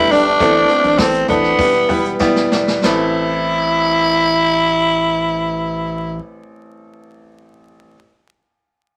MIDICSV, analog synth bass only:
0, 0, Header, 1, 2, 480
1, 0, Start_track
1, 0, Key_signature, 0, "minor"
1, 0, Tempo, 580271
1, 334, Time_signature, 4, 2, 24, 8
1, 817, Tempo, 607903
1, 1777, Tempo, 645856
1, 6804, End_track
2, 0, Start_track
2, 0, Title_t, "Analog synth bass"
2, 0, Program_c, 0, 38
2, 96, Note_on_c, 0, 31, 106
2, 291, Note_off_c, 0, 31, 0
2, 334, Note_on_c, 0, 33, 102
2, 531, Note_off_c, 0, 33, 0
2, 696, Note_on_c, 0, 33, 96
2, 796, Note_off_c, 0, 33, 0
2, 817, Note_on_c, 0, 33, 105
2, 1010, Note_off_c, 0, 33, 0
2, 1054, Note_on_c, 0, 33, 102
2, 1249, Note_off_c, 0, 33, 0
2, 1291, Note_on_c, 0, 28, 114
2, 1489, Note_off_c, 0, 28, 0
2, 1535, Note_on_c, 0, 28, 107
2, 1735, Note_off_c, 0, 28, 0
2, 1780, Note_on_c, 0, 28, 100
2, 1971, Note_off_c, 0, 28, 0
2, 2013, Note_on_c, 0, 28, 108
2, 2208, Note_off_c, 0, 28, 0
2, 2255, Note_on_c, 0, 33, 107
2, 4740, Note_off_c, 0, 33, 0
2, 6804, End_track
0, 0, End_of_file